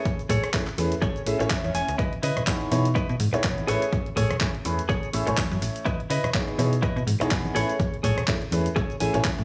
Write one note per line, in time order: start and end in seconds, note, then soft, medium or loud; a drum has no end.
0.00 0.21 G#4 medium
0.00 0.21 A4 medium
0.00 0.22 C#5 medium
0.05 kick loud
0.05 closed hi-hat medium
0.05 shaker soft
0.19 closed hi-hat soft
0.19 shaker soft
0.29 0.38 A2 medium
0.29 0.48 G#4 medium
0.29 0.49 A4 medium
0.29 0.49 C#5 medium
0.29 kick medium
0.29 open hi-hat loud
0.29 shaker medium
0.44 cross-stick medium
0.44 closed hi-hat medium
0.44 shaker soft
0.53 0.62 A3 medium
0.53 0.62 C#4 medium
0.53 0.62 E4 medium
0.53 0.62 G#4 medium
0.53 0.62 C#5 loud
0.53 kick loud
0.53 clap loud
0.53 closed hi-hat medium
0.53 shaker soft
0.67 muted clean electric guitar stroke soft
0.67 clap soft
0.67 closed hi-hat soft
0.67 shaker soft
0.78 0.94 E2 loud
0.78 0.91 A3 medium
0.78 0.91 C#4 medium
0.78 0.91 E4 medium
0.78 0.91 G#4 medium
0.78 0.91 B4 medium
0.78 open hi-hat loud
0.78 shaker medium
0.92 closed hi-hat medium
0.92 shaker soft
1.02 1.11 E1 medium
1.02 1.21 G#4 medium
1.02 1.21 A4 medium
1.02 1.22 C#5 medium
1.02 kick loud
1.02 closed hi-hat medium
1.02 swell medium
1.02 shaker soft
1.16 closed hi-hat soft
1.16 shaker soft
1.26 1.35 A1 medium
1.26 1.37 A3 medium
1.26 1.37 C#4 medium
1.26 1.37 E4 medium
1.26 1.37 G#4 medium
1.26 1.37 E5 loud
1.26 open hi-hat loud
1.26 shaker medium
1.39 1.47 A1 loud
1.39 1.97 A3 medium
1.39 1.98 C#4 medium
1.39 1.98 E4 medium
1.39 1.98 C#5 medium
1.39 1.98 G#5 medium
1.39 muted clean electric guitar stroke medium
1.39 closed hi-hat medium
1.39 shaker soft
1.50 1.73 E5 medium
1.50 muted clean electric guitar stroke soft
1.50 kick loud
1.50 clap loud
1.50 closed hi-hat medium
1.50 shaker soft
1.64 1.71 E2 medium
1.64 closed hi-hat soft
1.64 shaker soft
1.75 1.83 E1 loud
1.75 1.97 G#5 medium
1.75 open hi-hat loud
1.75 shaker medium
1.89 1.95 C#2 medium
1.89 closed hi-hat medium
1.89 shaker soft
1.98 2.08 C#2 loud
1.98 2.12 E4 loud
1.98 2.13 B4 loud
1.98 2.13 D#5 loud
1.98 kick loud
1.98 closed hi-hat medium
1.98 tambourine soft
1.98 high conga medium
1.98 shaker soft
2.13 closed hi-hat soft
2.23 2.32 C#3 medium
2.23 2.42 E4 medium
2.23 2.42 B4 medium
2.23 2.43 D#5 medium
2.23 open hi-hat loud
2.23 tambourine medium
2.23 shaker medium
2.36 cross-stick medium
2.36 closed hi-hat medium
2.36 tambourine soft
2.36 high conga medium
2.36 low conga loud
2.36 shaker soft
2.47 2.69 B3 medium
2.47 2.69 D#4 medium
2.47 2.69 E4 medium
2.47 2.69 G#4 medium
2.47 2.69 C#5 loud
2.47 kick loud
2.47 clap loud
2.47 shaker soft
2.60 muted clean electric guitar stroke soft
2.60 closed hi-hat soft
2.60 tambourine soft
2.71 2.95 B2 loud
2.71 2.84 B3 medium
2.71 2.85 D#4 medium
2.71 2.85 E4 medium
2.71 2.85 G#4 medium
2.71 2.85 C#5 loud
2.71 open hi-hat loud
2.71 tambourine medium
2.71 high conga medium
2.71 shaker medium
2.85 closed hi-hat medium
2.85 tambourine soft
2.85 shaker soft
2.95 3.14 E4 medium
2.95 3.15 B4 medium
2.95 3.15 D#5 loud
2.95 kick loud
2.95 closed hi-hat medium
2.95 tambourine soft
2.95 shaker soft
3.09 3.16 B2 loud
3.09 closed hi-hat soft
3.09 shaker soft
3.20 3.28 G#2 medium
3.20 open hi-hat loud
3.20 tambourine medium
3.20 high conga medium
3.20 shaker medium
3.33 3.42 B1 soft
3.33 3.40 B3 medium
3.33 3.40 D#4 medium
3.33 3.40 E4 medium
3.33 3.40 G#4 medium
3.33 3.40 C#5 loud
3.33 muted clean electric guitar stroke medium
3.33 closed hi-hat medium
3.33 tambourine soft
3.33 low conga medium
3.33 shaker soft
3.44 3.60 B1 medium
3.44 3.66 B3 medium
3.44 3.66 D#4 medium
3.44 3.66 E4 medium
3.44 3.66 G#4 medium
3.44 3.66 C#5 medium
3.44 muted clean electric guitar stroke soft
3.44 kick loud
3.44 clap loud
3.44 closed hi-hat medium
3.44 shaker soft
3.58 closed hi-hat soft
3.58 tambourine soft
3.58 high conga medium
3.58 shaker soft
3.67 3.77 A1 loud
3.67 3.81 A3 medium
3.67 3.81 C#4 medium
3.67 3.81 E4 medium
3.67 4.08 G#4 medium
3.67 3.82 G#4 medium
3.67 4.08 A4 medium
3.67 3.82 B4 medium
3.67 4.09 C#5 medium
3.67 open hi-hat loud
3.67 tambourine loud
3.67 shaker medium
3.82 closed hi-hat medium
3.82 tambourine soft
3.82 shaker soft
3.92 kick loud
3.92 closed hi-hat medium
3.92 tambourine soft
3.92 high conga medium
3.92 shaker soft
4.06 closed hi-hat soft
4.16 4.25 A2 medium
4.16 4.35 G#4 medium
4.16 4.36 A4 medium
4.16 4.36 C#5 medium
4.16 kick medium
4.16 open hi-hat loud
4.16 tambourine medium
4.16 shaker medium
4.29 cross-stick medium
4.29 closed hi-hat medium
4.29 tambourine soft
4.29 high conga medium
4.29 low conga loud
4.29 shaker soft
4.40 4.49 A3 medium
4.40 4.49 C#4 medium
4.40 4.49 E4 medium
4.40 4.49 G#4 medium
4.40 4.49 C#5 loud
4.40 kick loud
4.40 clap loud
4.40 shaker soft
4.54 muted clean electric guitar stroke soft
4.54 closed hi-hat soft
4.54 tambourine soft
4.65 4.81 E2 loud
4.65 4.78 A3 medium
4.65 4.78 C#4 medium
4.65 4.78 E4 medium
4.65 4.78 G#4 medium
4.65 4.78 B4 medium
4.65 open hi-hat loud
4.65 tambourine loud
4.65 high conga medium
4.65 shaker medium
4.79 closed hi-hat medium
4.79 tambourine soft
4.79 shaker soft
4.89 4.98 E1 medium
4.89 5.08 G#4 medium
4.89 5.08 A4 medium
4.89 5.09 C#5 medium
4.89 kick loud
4.89 closed hi-hat medium
4.89 tambourine medium
4.89 shaker soft
5.03 closed hi-hat soft
5.03 shaker soft
5.13 5.22 A1 medium
5.13 5.24 A3 medium
5.13 5.24 C#4 medium
5.13 5.24 E4 medium
5.13 5.24 G#4 medium
5.13 5.24 E5 loud
5.13 open hi-hat loud
5.13 tambourine medium
5.13 high conga medium
5.13 shaker medium
5.26 5.34 A1 loud
5.26 5.85 A3 medium
5.26 5.85 C#4 medium
5.26 5.85 E4 medium
5.26 5.85 C#5 loud
5.26 5.85 G#5 medium
5.26 muted clean electric guitar stroke medium
5.26 closed hi-hat medium
5.26 tambourine soft
5.26 low conga medium
5.26 shaker soft
5.37 5.46 E2 loud
5.37 muted clean electric guitar stroke soft
5.37 kick loud
5.37 clap loud
5.37 closed hi-hat medium
5.37 shaker soft
5.51 5.58 F#2 loud
5.51 closed hi-hat soft
5.51 tambourine soft
5.51 high conga medium
5.51 shaker soft
5.62 5.70 A1 medium
5.62 open hi-hat loud
5.62 tambourine medium
5.62 shaker medium
5.76 closed hi-hat medium
5.76 tambourine soft
5.76 shaker soft
5.85 5.95 C#2 loud
5.85 6.00 E4 loud
5.85 6.00 B4 loud
5.85 6.00 D#5 loud
5.85 kick loud
5.85 closed hi-hat medium
5.85 tambourine soft
5.85 high conga medium
5.85 shaker soft
6.00 closed hi-hat soft
6.10 6.19 C#3 medium
6.10 6.29 E4 medium
6.10 6.29 B4 medium
6.10 6.30 D#5 medium
6.10 open hi-hat loud
6.10 tambourine medium
6.10 shaker medium
6.24 cross-stick medium
6.24 closed hi-hat soft
6.24 tambourine soft
6.24 high conga medium
6.24 low conga medium
6.24 shaker soft
6.34 6.56 B3 medium
6.34 6.56 D#4 medium
6.34 6.56 E4 medium
6.34 6.56 G#4 medium
6.34 6.56 C#5 loud
6.34 kick loud
6.34 clap loud
6.34 closed hi-hat soft
6.34 shaker soft
6.48 muted clean electric guitar stroke soft
6.48 closed hi-hat soft
6.58 6.82 B2 loud
6.58 6.71 B3 medium
6.58 6.72 D#4 medium
6.58 6.72 E4 medium
6.58 6.72 G#4 medium
6.58 6.72 C#5 loud
6.58 open hi-hat loud
6.58 tambourine medium
6.58 high conga medium
6.58 shaker medium
6.73 closed hi-hat medium
6.73 tambourine soft
6.73 shaker soft
6.82 7.02 E4 medium
6.82 7.02 B4 medium
6.82 7.02 D#5 loud
6.82 kick loud
6.82 closed hi-hat medium
6.82 shaker soft
6.96 7.03 B2 loud
6.96 closed hi-hat soft
6.96 shaker soft
7.07 7.15 G#2 medium
7.07 open hi-hat loud
7.07 tambourine medium
7.07 high conga medium
7.07 shaker medium
7.20 7.29 B1 soft
7.20 7.27 B3 medium
7.20 7.27 D#4 medium
7.20 7.27 E4 medium
7.20 7.27 G#4 medium
7.20 7.27 C#5 loud
7.20 muted clean electric guitar stroke medium
7.20 closed hi-hat medium
7.20 tambourine soft
7.20 low conga medium
7.20 shaker soft
7.31 7.48 B1 medium
7.31 7.53 B3 medium
7.31 7.53 D#4 medium
7.31 7.53 E4 medium
7.31 7.53 C#5 medium
7.31 muted clean electric guitar stroke soft
7.31 kick loud
7.31 clap loud
7.31 closed hi-hat soft
7.31 shaker soft
7.45 closed hi-hat soft
7.45 tambourine soft
7.45 high conga loud
7.45 shaker soft
7.55 7.64 A1 loud
7.55 7.69 A3 medium
7.55 7.69 C#4 medium
7.55 7.69 E4 medium
7.55 7.95 G#4 medium
7.55 7.69 G#4 medium
7.55 7.95 A4 medium
7.55 7.69 B4 loud
7.55 7.96 C#5 medium
7.55 open hi-hat loud
7.55 tambourine loud
7.55 shaker medium
7.69 closed hi-hat soft
7.69 tambourine soft
7.69 shaker soft
7.79 kick loud
7.79 closed hi-hat soft
7.79 tambourine soft
7.79 high conga loud
7.79 shaker soft
7.94 closed hi-hat soft
8.03 8.12 A2 medium
8.03 8.22 G#4 medium
8.03 8.23 A4 medium
8.03 8.23 C#5 medium
8.03 kick medium
8.03 open hi-hat loud
8.03 tambourine medium
8.03 shaker medium
8.16 cross-stick medium
8.16 closed hi-hat soft
8.16 tambourine soft
8.16 high conga medium
8.16 low conga medium
8.16 shaker soft
8.27 8.36 A3 medium
8.27 8.36 C#4 medium
8.27 8.36 E4 medium
8.27 8.36 G#4 medium
8.27 8.36 C#5 loud
8.27 kick loud
8.27 clap loud
8.27 closed hi-hat soft
8.27 shaker soft
8.41 muted clean electric guitar stroke soft
8.41 closed hi-hat soft
8.41 tambourine soft
8.51 8.69 E2 loud
8.51 8.65 A3 medium
8.51 8.65 C#4 medium
8.51 8.65 E4 medium
8.51 8.66 G#4 medium
8.51 8.66 B4 medium
8.51 open hi-hat loud
8.51 tambourine medium
8.51 high conga loud
8.51 shaker medium
8.66 closed hi-hat medium
8.66 tambourine soft
8.66 shaker soft
8.76 8.85 E1 medium
8.76 8.95 G#4 medium
8.76 8.95 A4 medium
8.76 8.96 C#5 loud
8.76 kick loud
8.76 closed hi-hat medium
8.76 tambourine medium
8.76 shaker soft
8.90 closed hi-hat soft
8.90 tambourine soft
8.90 shaker soft
9.00 9.09 A1 medium
9.00 9.11 A3 medium
9.00 9.11 C#4 medium
9.00 9.11 E4 medium
9.00 9.11 G#4 medium
9.00 9.11 E5 loud
9.00 9.23 G#5 medium
9.00 open hi-hat loud
9.00 tambourine medium
9.00 high conga medium
9.00 shaker medium
9.13 9.21 A1 loud
9.13 9.44 A3 medium
9.13 9.44 C#4 medium
9.13 9.44 E4 medium
9.13 9.44 C#5 loud
9.13 9.44 G#5 medium
9.13 muted clean electric guitar stroke medium
9.13 closed hi-hat medium
9.13 tambourine soft
9.13 low conga medium
9.13 shaker soft
9.24 9.33 E2 loud
9.24 9.27 C#5 medium
9.24 muted clean electric guitar stroke soft
9.24 kick loud
9.24 clap loud
9.24 closed hi-hat soft
9.24 shaker soft
9.38 9.44 A2 medium
9.38 closed hi-hat soft
9.38 tambourine soft
9.38 high conga medium
9.38 shaker soft